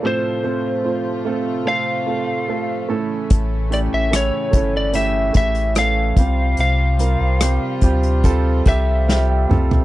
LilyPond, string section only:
\new Staff \with { instrumentName = "String section" } { \clef bass \time 4/4 \key c \mixolydian \tempo 4 = 73 << { <c f f'>2.~ <c f f'>8 <cis e cis'>8~ | <cis e cis'>2.~ <cis e cis'>8 <c f f'>8~ | <c f f'>1 | } \\ { a1~ | a2.~ a8 g8~ | g1 | } >> }